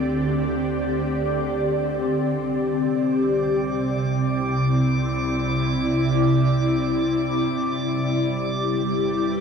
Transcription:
0.00 2.42 D2 medium
0.00 2.45 D3 medium
0.00 7.45 C4 medium
0.00 4.20 G4 medium
0.00 9.40 D5 medium
2.43 7.41 C2 medium
2.43 7.46 C3 medium
2.43 9.40 D6 medium
3.84 9.40 E4 medium
7.46 9.40 G1 medium
7.46 9.40 G3 medium
7.61 9.40 G4 medium
8.87 9.40 B4 medium

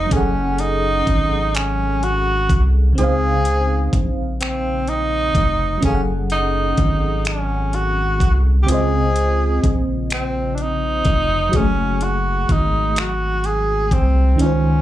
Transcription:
0.00 0.14 D#4 loud
0.00 0.10 F5 medium
0.06 2.90 F#3 medium
0.06 2.92 C#4 medium
0.11 1.03 F#1 loud
0.11 0.62 C#4 medium
0.11 2.93 G#4 medium
0.11 2.94 A4 medium
0.11 kick loud
0.11 closed hi-hat medium
0.17 2.96 F#5 medium
0.58 1.57 D#4 loud
0.58 closed hi-hat medium
1.07 2.51 G#1 medium
1.07 kick medium
1.07 closed hi-hat soft
1.55 2.05 C#4 medium
1.55 finger snap medium
1.55 closed hi-hat medium
2.03 2.71 F#4 loud
2.03 closed hi-hat soft
2.49 2.93 C2 medium
2.49 kick medium
2.49 closed hi-hat soft
2.93 5.77 C#3 medium
2.93 5.78 C4 medium
2.98 3.89 C#2 loud
2.98 5.79 D#4 medium
2.98 4.01 G#4 loud
2.98 5.80 C5 medium
2.98 closed hi-hat medium
3.03 5.82 F5 medium
3.45 closed hi-hat medium
3.93 5.32 A#1 medium
3.93 kick medium
3.93 closed hi-hat soft
4.41 4.90 C4 medium
4.41 finger snap medium
4.41 closed hi-hat medium
4.88 5.83 D#4 loud
4.88 closed hi-hat soft
5.35 5.79 F1 medium
5.35 kick medium
5.35 closed hi-hat soft
5.78 8.62 F#3 medium
5.78 8.63 C#4 medium
5.82 6.74 F#1 loud
5.82 6.01 C#4 medium
5.82 8.65 G#4 medium
5.82 8.66 A4 medium
5.82 kick medium
5.82 closed hi-hat medium
5.88 5.92 F5 soft
5.95 8.70 F#5 medium
6.30 7.22 D#4 medium
6.30 closed hi-hat medium
6.77 8.22 G#1 loud
6.77 kick medium
6.77 closed hi-hat soft
7.25 7.77 C#4 medium
7.25 finger snap medium
7.25 closed hi-hat medium
7.73 8.42 F#4 medium
7.73 closed hi-hat soft
8.20 8.64 C2 medium
8.20 kick medium
8.20 closed hi-hat soft
8.62 11.48 C#3 medium
8.62 8.71 G4 medium
8.67 9.60 C#2 loud
8.67 11.49 C4 medium
8.67 11.50 F4 medium
8.67 9.76 G#4 medium
8.67 closed hi-hat medium
8.72 11.52 C5 medium
8.72 11.53 D#5 medium
9.16 closed hi-hat medium
9.64 11.03 A#1 medium
9.64 kick medium
9.64 closed hi-hat soft
10.10 10.56 C4 medium
10.10 finger snap medium
10.10 closed hi-hat medium
10.55 10.64 D4 medium
10.55 closed hi-hat soft
10.62 11.58 D#4 loud
11.05 11.50 F1 medium
11.05 kick medium
11.05 closed hi-hat soft
11.49 14.33 F#3 medium
11.49 14.35 F#4 medium
11.49 closed hi-hat medium
11.53 12.45 F#1 loud
11.53 14.37 A3 medium
11.53 12.05 C#4 medium
11.53 14.36 G#4 soft
11.53 kick medium
12.01 12.53 F#4 medium
12.01 closed hi-hat soft
12.49 13.93 G#1 medium
12.49 13.01 D#4 medium
12.49 kick medium
12.49 closed hi-hat soft
12.96 13.47 F#4 medium
12.96 finger snap loud
12.96 closed hi-hat medium
13.44 13.95 G#4 medium
13.44 closed hi-hat soft
13.91 14.35 C2 medium
13.91 14.40 C4 medium
13.91 kick medium
13.91 closed hi-hat soft
14.35 14.82 D#3 medium
14.35 14.82 C#4 medium
14.35 closed hi-hat medium
14.40 14.82 C#2 loud
14.40 14.82 C#4 medium
14.40 14.82 D#4 soft
14.40 14.82 F4 soft
14.46 14.82 C5 medium

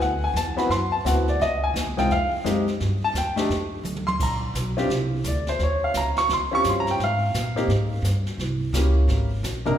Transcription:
0.00 0.33 D2 medium
0.00 0.23 F#5 medium
0.00 brush sweep soft
0.00 snare soft
0.24 0.36 G#5 medium
0.34 0.68 E2 medium
0.34 0.58 A5 medium
0.34 snare medium
0.34 hi-hat pedal medium
0.56 0.68 B3 medium
0.56 0.69 C4 medium
0.56 0.69 E4 medium
0.56 0.69 F#4 medium
0.56 0.70 B5 medium
0.56 snare soft
0.69 1.03 F#2 medium
0.69 0.92 C6 loud
0.69 brush sweep soft
0.69 snare soft
0.92 1.05 A5 medium
1.04 1.39 D2 medium
1.04 1.25 B3 medium
1.04 1.25 C4 medium
1.04 1.25 E4 medium
1.04 1.26 F#4 medium
1.04 1.28 F#5 medium
1.04 snare medium
1.04 hi-hat pedal medium
1.28 1.41 D5 medium
1.28 snare soft
1.39 1.73 C#2 medium
1.39 1.62 D#5 medium
1.39 brush sweep soft
1.39 snare soft
1.64 1.71 G#5 loud
1.74 1.86 D#2 medium
1.74 snare medium
1.74 hi-hat pedal medium
1.86 1.98 C#2 soft
1.97 2.09 C2 medium
1.97 2.09 G#3 medium
1.97 2.09 C4 medium
1.97 2.09 D#4 medium
1.97 2.09 F4 medium
1.97 2.10 G5 medium
1.97 snare soft
2.10 2.44 F2 medium
2.10 2.32 F5 medium
2.10 brush sweep soft
2.10 snare soft
2.44 2.79 F#2 medium
2.44 2.64 G#3 medium
2.44 2.65 C4 medium
2.44 2.65 D#4 medium
2.44 2.65 G4 medium
2.44 snare medium
2.44 hi-hat pedal medium
2.68 snare soft
2.80 3.13 G2 medium
2.80 brush sweep soft
2.80 snare soft
3.04 3.16 A5 loud
3.14 3.48 D#2 medium
3.14 snare medium
3.14 hi-hat pedal medium
3.18 3.38 G5 medium
3.36 3.48 A3 medium
3.36 3.48 D4 medium
3.36 3.48 D#4 medium
3.36 3.49 G4 medium
3.36 snare medium
3.49 3.83 F2 medium
3.49 brush sweep medium
3.49 snare soft
3.83 4.18 D2 medium
3.83 hi-hat pedal medium
3.83 mid tom soft
3.96 mid tom medium
4.07 4.19 C6 loud
4.07 mid tom medium
4.19 4.53 A#1 medium
4.19 4.35 A#5 medium
4.19 brush sweep soft
4.19 kick medium
4.19 snare soft
4.19 crash medium
4.54 4.88 B1 medium
4.54 snare medium
4.54 hi-hat pedal medium
4.77 4.88 C4 medium
4.77 4.88 D4 medium
4.77 4.89 F4 medium
4.77 4.89 G4 medium
4.77 snare soft
4.89 5.23 C2 medium
4.89 brush sweep medium
4.89 snare soft
5.24 5.58 D2 medium
5.24 5.47 D5 medium
5.24 snare medium
5.24 hi-hat pedal medium
5.47 5.60 C5 medium
5.47 snare soft
5.59 5.93 D#2 medium
5.59 brush sweep soft
5.59 snare soft
5.63 5.83 C#5 medium
5.84 5.95 F5 medium
5.94 6.28 C#2 medium
5.94 6.17 A#5 medium
5.94 snare medium
5.94 hi-hat pedal medium
6.16 6.30 C#6 loud
6.16 snare soft
6.29 6.63 D#2 medium
6.29 brush sweep soft
6.29 snare soft
6.33 6.53 C6 medium
6.51 6.97 C4 medium
6.51 6.97 C#4 medium
6.51 6.97 F4 medium
6.51 6.97 G4 medium
6.51 6.66 C#6 loud
6.64 6.97 G2 medium
6.64 snare medium
6.64 hi-hat pedal medium
6.69 6.78 C6 medium
6.80 6.89 A#5 loud
6.87 snare soft
6.91 7.01 G5 medium
6.98 7.32 G#2 medium
6.98 brush sweep soft
6.98 snare soft
7.04 8.02 F5 medium
7.34 7.67 A#2 medium
7.34 snare medium
7.34 hi-hat pedal medium
7.56 7.68 A#3 medium
7.56 7.68 C4 medium
7.56 7.68 D#4 medium
7.56 7.68 G4 medium
7.56 snare soft
7.68 8.02 G#2 medium
7.68 brush sweep medium
7.68 snare soft
8.02 8.37 G2 medium
8.02 snare medium
8.02 hi-hat pedal medium
8.26 snare soft
8.38 8.72 C2 medium
8.38 brush sweep soft
8.38 snare soft
8.73 9.07 C#2 medium
8.73 9.27 A#3 medium
8.73 9.27 C#4 medium
8.73 9.27 E4 medium
8.73 9.27 G4 medium
8.73 snare medium
8.73 hi-hat pedal medium
9.08 9.42 G#1 medium
9.08 brush sweep soft
9.08 snare soft
9.43 9.77 A#1 medium
9.43 snare medium
9.43 hi-hat pedal soft
9.65 9.77 C3 medium
9.65 9.78 A#3 medium
9.65 9.78 D4 medium
9.65 9.78 D#4 medium
9.65 9.78 A#4 medium
9.65 snare soft

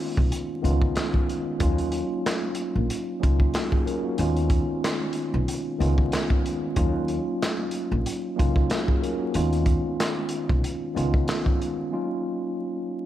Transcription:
0.00 0.62 D#3 medium
0.00 0.62 G#3 medium
0.00 0.63 B3 medium
0.00 0.64 C#4 medium
0.00 0.64 D#4 medium
0.00 0.65 F4 medium
0.17 0.29 B1 loud
0.17 kick medium
0.32 closed hi-hat loud
0.62 0.89 C#2 medium
0.62 1.24 D#3 medium
0.62 1.25 G#3 medium
0.62 1.25 B3 medium
0.62 1.25 C#4 medium
0.62 1.26 D#4 medium
0.62 1.26 F4 loud
0.62 closed hi-hat medium
0.82 kick loud
0.96 snare loud
0.96 clap loud
0.96 closed hi-hat medium
1.14 kick loud
1.29 closed hi-hat medium
1.59 2.00 D#2 loud
1.59 2.43 F#3 medium
1.59 2.43 A#3 medium
1.59 2.44 C#4 medium
1.59 2.44 D#4 medium
1.59 2.45 F4 medium
1.59 kick loud
1.59 closed hi-hat medium
1.78 closed hi-hat medium
1.92 closed hi-hat medium
2.26 snare loud
2.26 clap medium
2.26 closed hi-hat loud
2.55 closed hi-hat medium
2.76 2.87 A#1 loud
2.90 closed hi-hat loud
3.20 3.82 F#3 medium
3.20 3.53 A#3 medium
3.20 3.54 C#4 medium
3.20 3.54 D#4 medium
3.20 3.54 F4 loud
3.20 kick loud
3.20 closed hi-hat medium
3.24 3.48 C#2 loud
3.40 kick loud
3.53 3.71 A#3 medium
3.53 3.71 F#4 medium
3.53 snare loud
3.53 clap loud
3.53 closed hi-hat medium
3.72 3.85 G#4 medium
3.72 kick loud
3.86 4.04 C#4 medium
3.86 4.03 A#4 medium
3.86 closed hi-hat medium
4.04 4.35 A#3 medium
4.04 4.35 F#4 medium
4.17 4.58 D#2 loud
4.17 5.01 D#3 medium
4.17 5.02 G#3 medium
4.17 5.02 B3 medium
4.17 5.02 C#4 medium
4.17 5.02 D#4 medium
4.17 5.03 F4 loud
4.17 closed hi-hat medium
4.36 closed hi-hat medium
4.50 kick medium
4.50 closed hi-hat medium
4.84 snare loud
4.84 clap medium
4.84 closed hi-hat loud
5.13 closed hi-hat medium
5.34 5.45 B1 loud
5.48 closed hi-hat loud
5.78 6.05 C#2 medium
5.78 6.41 D#3 medium
5.78 6.41 G#3 medium
5.78 6.41 B3 medium
5.78 6.42 C#4 medium
5.78 6.42 D#4 medium
5.78 6.42 F4 loud
5.78 closed hi-hat medium
5.98 kick loud
6.12 snare loud
6.12 clap loud
6.12 closed hi-hat medium
6.30 kick loud
6.46 closed hi-hat medium
6.75 7.16 D#2 loud
6.75 7.59 F#3 medium
6.75 7.59 A#3 medium
6.75 7.60 C#4 medium
6.75 7.60 D#4 medium
6.75 7.61 F4 medium
6.75 kick loud
6.75 closed hi-hat medium
7.08 closed hi-hat medium
7.42 snare loud
7.42 clap medium
7.42 closed hi-hat loud
7.71 closed hi-hat medium
7.92 8.03 A#1 medium
8.06 closed hi-hat loud
8.36 8.64 C#2 loud
8.36 8.99 F#3 medium
8.36 8.69 A#3 medium
8.36 8.70 C#4 medium
8.36 8.70 D#4 medium
8.36 8.71 F4 loud
8.36 kick loud
8.36 closed hi-hat medium
8.56 kick loud
8.69 8.87 A#3 medium
8.69 8.87 F#4 medium
8.69 snare loud
8.69 clap loud
8.69 closed hi-hat medium
8.88 9.01 G#4 medium
8.88 kick loud
9.02 9.20 C#4 medium
9.02 9.19 A#4 medium
9.02 closed hi-hat medium
9.20 9.51 A#3 medium
9.20 9.51 F#4 medium
9.33 9.74 D#2 loud
9.33 10.17 D#3 medium
9.33 10.17 G#3 medium
9.33 10.18 B3 medium
9.33 10.18 C#4 medium
9.33 10.18 D#4 medium
9.33 10.19 F4 loud
9.33 closed hi-hat medium
9.53 closed hi-hat medium
9.66 kick loud
9.66 closed hi-hat medium
10.00 snare loud
10.00 clap medium
10.00 closed hi-hat loud
10.29 closed hi-hat medium
10.49 10.61 B1 loud
10.49 kick loud
10.64 closed hi-hat loud
10.94 11.22 C#2 medium
10.94 11.56 D#3 medium
10.94 11.57 G#3 medium
10.94 11.57 B3 medium
10.94 11.57 C#4 medium
10.94 11.58 D#4 medium
10.94 11.58 F4 loud
10.94 closed hi-hat medium
11.14 kick loud
11.28 snare loud
11.28 clap loud
11.28 closed hi-hat medium
11.46 kick loud
11.62 closed hi-hat medium
11.91 12.75 F#3 medium
11.91 12.75 A#3 medium
11.91 12.76 C#4 medium
11.91 12.76 D#4 medium
11.91 12.76 F4 medium

